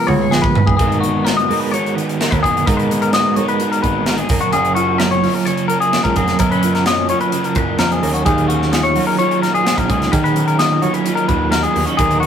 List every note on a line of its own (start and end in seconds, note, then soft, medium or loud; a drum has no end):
0.00 0.76 G#3 medium
0.00 0.32 B3 medium
0.00 0.76 F4 medium
0.07 0.26 C#2 medium
0.07 0.76 G#2 medium
0.07 0.22 F#4 medium
0.07 0.31 C#5 medium
0.07 mid tom medium
0.21 0.56 G#4 medium
0.31 0.53 A#1 medium
0.31 1.02 B3 medium
0.31 0.43 G#4 medium
0.31 snare medium
0.42 0.66 B4 medium
0.42 kick medium
0.55 0.76 G#1 medium
0.55 0.77 B4 medium
0.55 floor tom loud
0.66 0.76 G#4 medium
0.66 kick medium
0.77 1.51 G#1 loud
0.77 1.70 G#2 medium
0.77 2.64 G#2 medium
0.77 1.26 D#3 medium
0.77 1.04 G#3 medium
0.77 1.00 G#4 medium
0.77 1.50 A#4 medium
0.77 kick medium
0.77 closed hi-hat medium
0.81 1.03 B3 medium
0.81 1.02 D#4 medium
0.92 closed hi-hat soft
1.00 1.48 B3 medium
1.00 2.43 B3 medium
1.00 1.47 D#4 medium
1.00 1.24 F#4 medium
1.00 closed hi-hat medium
1.05 1.50 G#3 soft
1.24 1.74 F#4 medium
1.24 1.37 A#4 medium
1.24 snare loud
1.24 closed hi-hat medium
1.37 1.60 D#5 medium
1.37 closed hi-hat soft
1.48 2.64 G#3 medium
1.48 1.72 G#3 medium
1.48 1.73 B3 medium
1.48 1.74 D#4 medium
1.48 2.21 A#4 medium
1.48 open hi-hat medium
1.60 1.71 B4 medium
1.71 2.18 G#2 medium
1.71 2.17 D#3 medium
1.71 1.96 G#3 medium
1.71 1.95 B3 medium
1.71 1.93 D#4 loud
1.71 2.71 F#4 medium
1.71 1.95 C#5 medium
1.71 closed hi-hat medium
1.86 closed hi-hat soft
1.95 2.63 D#3 medium
1.95 2.19 G#3 medium
1.95 2.20 B3 medium
1.95 2.21 D#4 medium
1.95 2.08 B4 medium
1.95 closed hi-hat soft
2.08 2.31 A#4 medium
2.08 closed hi-hat soft
2.19 2.66 D#3 medium
2.19 2.44 G#3 medium
2.19 2.43 B3 medium
2.19 2.42 D#4 medium
2.19 2.69 A#4 medium
2.19 snare medium
2.19 closed hi-hat medium
2.31 2.41 D#2 medium
2.31 2.42 B4 medium
2.31 kick medium
2.31 closed hi-hat soft
2.43 2.61 F#1 medium
2.43 2.67 G#3 soft
2.43 2.67 B3 medium
2.43 2.90 B3 medium
2.43 2.68 D#4 medium
2.43 2.66 G#4 medium
2.43 kick medium
2.43 closed hi-hat medium
2.57 closed hi-hat soft
2.66 3.13 G#2 medium
2.66 3.38 G#2 medium
2.66 3.83 G#2 medium
2.66 3.13 D#3 medium
2.66 2.91 G#3 medium
2.66 2.90 B3 medium
2.66 2.89 D#4 medium
2.66 2.77 A#4 medium
2.66 3.37 A#4 medium
2.66 kick loud
2.66 closed hi-hat medium
2.77 3.01 B4 medium
2.77 closed hi-hat soft
2.90 3.39 G#3 medium
2.90 3.38 B3 medium
2.90 4.31 B3 medium
2.90 3.36 D#4 medium
2.90 closed hi-hat medium
3.02 3.13 A#4 medium
3.02 closed hi-hat soft
3.13 3.61 F#4 medium
3.13 3.36 D#5 medium
3.13 snare loud
3.13 closed hi-hat medium
3.36 4.27 G#3 medium
3.36 3.61 B3 medium
3.36 3.62 D#4 medium
3.36 4.30 A#4 medium
3.36 3.48 C#5 medium
3.36 closed hi-hat medium
3.40 3.60 G#3 medium
3.48 3.71 B4 medium
3.48 closed hi-hat soft
3.60 4.07 G#2 medium
3.60 4.05 D#3 medium
3.60 3.84 G#3 medium
3.60 3.83 B3 medium
3.60 3.81 D#4 medium
3.60 4.76 F#4 medium
3.60 closed hi-hat medium
3.72 3.82 A#4 medium
3.72 closed hi-hat soft
3.82 4.19 G#1 medium
3.82 4.06 A#2 medium
3.82 4.06 G#3 medium
3.82 4.08 B3 medium
3.82 4.08 D#4 medium
3.82 4.06 B4 medium
3.82 kick medium
3.82 closed hi-hat medium
4.06 4.30 G#2 medium
4.06 4.28 D#3 medium
4.06 4.29 G#3 medium
4.06 4.29 B3 medium
4.06 4.29 D#4 medium
4.06 4.18 A#4 medium
4.06 snare medium
4.06 closed hi-hat medium
4.18 4.40 G#4 medium
4.18 closed hi-hat soft
4.29 4.39 F#1 medium
4.29 6.16 F#2 medium
4.29 4.51 F#2 medium
4.29 4.51 C#3 medium
4.29 4.53 F#3 medium
4.29 4.54 A#3 medium
4.29 4.54 C#4 medium
4.29 5.00 A#4 medium
4.29 kick medium
4.29 open hi-hat medium
4.41 4.52 F#4 medium
4.41 closed hi-hat soft
4.52 5.25 F#1 loud
4.52 5.45 F#2 medium
4.52 4.99 C#3 medium
4.52 4.78 F#3 medium
4.52 4.77 A#3 medium
4.52 5.95 C#4 medium
4.52 4.75 C#4 medium
4.52 4.75 G#4 medium
4.52 closed hi-hat medium
4.65 closed hi-hat soft
4.75 5.25 F#3 medium
4.75 5.24 A#3 medium
4.75 5.22 C#4 medium
4.75 5.22 F4 medium
4.75 4.98 F#4 medium
4.75 closed hi-hat medium
4.98 6.87 F#3 medium
4.98 5.11 A#4 medium
4.98 5.70 C#5 soft
4.98 snare loud
4.98 closed hi-hat medium
5.11 5.34 C#5 medium
5.11 closed hi-hat soft
5.22 5.46 F#3 soft
5.22 5.48 A#3 medium
5.22 5.48 C#4 medium
5.22 6.20 F4 medium
5.22 open hi-hat medium
5.34 5.45 A#4 medium
5.45 5.93 F#2 medium
5.45 5.91 C#3 medium
5.45 6.16 C#3 medium
5.45 5.72 F#3 medium
5.45 5.70 A#3 medium
5.45 5.68 C#4 loud
5.45 5.68 C#5 medium
5.45 closed hi-hat medium
5.58 closed hi-hat soft
5.68 5.94 A#3 medium
5.68 5.95 C#4 medium
5.68 5.80 A#4 medium
5.68 6.18 A#4 soft
5.68 closed hi-hat medium
5.73 5.93 F#3 medium
5.80 6.03 G#4 medium
5.80 closed hi-hat soft
5.93 6.39 C#3 medium
5.93 6.19 F#3 medium
5.93 6.18 A#3 medium
5.93 6.39 C#4 medium
5.93 6.16 C#4 medium
5.93 snare medium
5.93 closed hi-hat medium
6.04 6.14 C#2 medium
6.04 6.16 A#4 medium
6.04 kick medium
6.04 closed hi-hat soft
6.16 6.34 F1 medium
6.16 8.01 F#2 medium
6.16 6.42 A#3 medium
6.16 6.43 C#4 medium
6.16 6.39 G#4 medium
6.16 6.87 A#4 medium
6.16 kick medium
6.16 closed hi-hat medium
6.20 6.41 F#3 medium
6.28 snare soft
6.28 closed hi-hat soft
6.39 7.11 F#2 loud
6.39 6.87 F#2 medium
6.39 6.87 C#3 medium
6.39 6.65 F#3 medium
6.39 6.64 A#3 medium
6.39 6.52 B3 medium
6.39 6.51 A#4 medium
6.39 kick medium
6.39 closed hi-hat medium
6.44 6.62 C#4 medium
6.51 7.78 C#4 soft
6.51 6.75 B4 medium
6.51 closed hi-hat soft
6.63 7.12 F#3 medium
6.63 7.11 A#3 medium
6.63 7.09 C#4 medium
6.63 7.11 F4 medium
6.63 closed hi-hat medium
6.75 6.86 A#4 medium
6.75 snare soft
6.75 closed hi-hat soft
6.86 8.95 F#3 medium
6.86 7.56 C#5 medium
6.86 7.09 D#5 medium
6.86 snare loud
6.86 closed hi-hat medium
7.09 7.34 F#3 medium
7.09 7.34 A#3 medium
7.09 7.35 C#4 medium
7.09 8.05 F4 medium
7.09 7.20 C#5 medium
7.09 closed hi-hat medium
7.21 7.45 B4 medium
7.21 closed hi-hat soft
7.32 7.79 F#2 medium
7.32 8.03 C#3 medium
7.32 7.78 C#3 medium
7.32 7.58 F#3 medium
7.32 7.57 A#3 medium
7.32 7.55 C#4 medium
7.32 closed hi-hat medium
7.44 7.56 A#4 medium
7.44 closed hi-hat soft
7.55 7.74 F#1 medium
7.55 7.79 F#3 medium
7.55 7.80 A#3 medium
7.55 7.82 C#4 medium
7.55 8.02 A#4 medium
7.55 7.79 B4 medium
7.55 kick medium
7.55 closed hi-hat medium
7.79 8.00 F2 medium
7.79 8.24 C#3 medium
7.79 8.06 F#3 medium
7.79 8.04 A#3 medium
7.79 8.28 C#4 medium
7.79 8.02 C#4 medium
7.79 7.91 A#4 medium
7.79 snare loud
7.79 closed hi-hat medium
7.92 8.14 G#4 medium
7.92 closed hi-hat soft
8.02 8.23 D#2 medium
8.02 8.26 F#2 medium
8.02 8.27 A#3 medium
8.02 8.28 C#4 medium
8.02 8.25 A#4 medium
8.02 open hi-hat medium
8.06 8.26 F#3 medium
8.14 8.25 F#4 medium
8.14 closed hi-hat soft
8.25 8.97 D#2 medium
8.25 10.11 D#3 medium
8.25 9.18 D#3 medium
8.25 8.52 F#3 medium
8.25 8.50 A#3 medium
8.25 8.49 D#4 medium
8.25 8.95 G#4 medium
8.25 8.48 G#4 medium
8.25 kick loud
8.25 closed hi-hat medium
8.38 closed hi-hat soft
8.48 8.98 F#3 medium
8.48 8.96 A#3 medium
8.48 9.87 C#4 medium
8.48 8.95 D#4 medium
8.48 8.72 F#4 medium
8.48 closed hi-hat medium
8.62 snare soft
8.72 9.19 F4 medium
8.72 8.84 G#4 medium
8.72 snare loud
8.72 closed hi-hat medium
8.83 9.07 C#5 medium
8.83 closed hi-hat soft
8.95 10.82 F#3 medium
8.95 9.19 F#3 medium
8.95 9.20 A#3 medium
8.95 9.21 D#4 medium
8.95 9.08 F#4 medium
8.95 open hi-hat medium
9.07 9.64 G#4 soft
9.07 9.18 A#4 medium
9.18 9.64 D#3 medium
9.18 9.44 F#3 medium
9.18 9.43 A#3 medium
9.18 9.41 D#4 medium
9.18 10.10 F4 medium
9.18 9.42 C#5 medium
9.18 closed hi-hat medium
9.31 closed hi-hat soft
9.41 10.09 A#2 medium
9.41 9.65 F#3 medium
9.41 9.66 A#3 medium
9.41 9.67 D#4 medium
9.41 9.54 A#4 medium
9.41 snare soft
9.41 closed hi-hat soft
9.54 9.77 G#4 medium
9.54 closed hi-hat soft
9.64 10.10 D#3 medium
9.64 9.90 F#3 medium
9.64 9.89 A#3 medium
9.64 9.87 D#4 medium
9.64 9.76 F#4 soft
9.64 snare loud
9.64 closed hi-hat medium
9.76 9.86 A#1 medium
9.76 10.11 G#4 soft
9.76 9.90 A#4 medium
9.76 kick medium
9.76 closed hi-hat soft
9.88 10.07 C#2 medium
9.88 10.12 F#3 soft
9.88 10.13 A#3 medium
9.88 10.09 C#4 medium
9.88 10.13 D#4 medium
9.88 10.12 G#4 medium
9.88 kick medium
9.88 closed hi-hat soft
10.02 snare soft
10.02 closed hi-hat soft
10.11 11.04 D#3 medium
10.11 11.99 D#3 medium
10.11 10.84 D#3 loud
10.11 10.37 F#3 medium
10.11 10.35 A#3 medium
10.11 10.34 D#4 loud
10.11 10.81 G#4 medium
10.11 10.24 A#4 medium
10.11 kick loud
10.11 closed hi-hat medium
10.24 10.47 B4 medium
10.24 closed hi-hat soft
10.34 10.84 F#3 medium
10.34 10.83 A#3 medium
10.34 11.75 C#4 medium
10.34 10.81 D#4 medium
10.34 closed hi-hat medium
10.48 10.59 A#4 medium
10.48 closed hi-hat soft
10.59 11.06 F4 medium
10.59 10.82 D#5 medium
10.59 snare loud
10.59 closed hi-hat medium
10.82 12.27 F#3 medium
10.82 11.06 F#3 medium
10.82 11.06 A#3 medium
10.82 11.07 D#4 medium
10.82 10.93 F#4 medium
10.82 10.94 C#5 medium
10.82 closed hi-hat medium
10.93 11.51 G#4 soft
10.93 11.15 B4 medium
10.93 closed hi-hat soft
11.05 11.49 D#3 medium
11.05 11.30 F#3 medium
11.05 11.29 A#3 medium
11.05 11.27 D#4 loud
11.05 11.96 F4 medium
11.05 closed hi-hat medium
11.15 11.28 A#4 medium
11.15 closed hi-hat soft
11.28 11.64 D#2 medium
11.28 11.95 A#2 medium
11.28 11.50 F#3 medium
11.28 11.52 A#3 medium
11.28 11.53 D#4 medium
11.28 11.51 B4 medium
11.28 kick medium
11.28 closed hi-hat medium
11.50 11.97 D#3 medium
11.50 11.76 F#3 medium
11.50 11.74 A#3 medium
11.50 11.73 D#4 medium
11.50 11.63 F#4 medium
11.50 11.63 A#4 medium
11.50 snare medium
11.50 closed hi-hat medium
11.63 11.85 G#4 medium
11.63 11.98 G#4 soft
11.63 closed hi-hat soft
11.73 11.84 D#2 medium
11.73 11.98 F#3 medium
11.73 11.99 A#3 medium
11.73 11.88 B3 medium
11.73 12.00 D#4 medium
11.73 open hi-hat medium
11.85 11.99 C#4 soft
11.85 11.97 F#4 medium
11.85 closed hi-hat soft
11.97 12.27 D#2 loud
11.97 12.27 D#3 medium
11.97 12.24 F#3 medium
11.97 12.22 B3 medium
11.97 12.21 D#4 medium
11.97 12.20 G#4 medium
11.97 12.27 A#4 medium
11.97 kick loud
11.97 closed hi-hat medium
12.11 closed hi-hat soft
12.20 12.27 B3 medium
12.20 12.27 D#4 medium
12.20 12.27 F#4 medium
12.20 closed hi-hat medium